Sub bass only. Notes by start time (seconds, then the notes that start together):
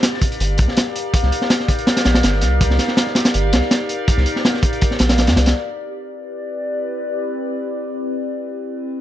0.40 G1
0.59 C2
1.23 C2
2.05 A#1
2.24 G1
2.42 C2
2.70 C2
3.34 G1
3.53 C2
4.17 C2
5.00 A#1
5.28 F2
5.37 C2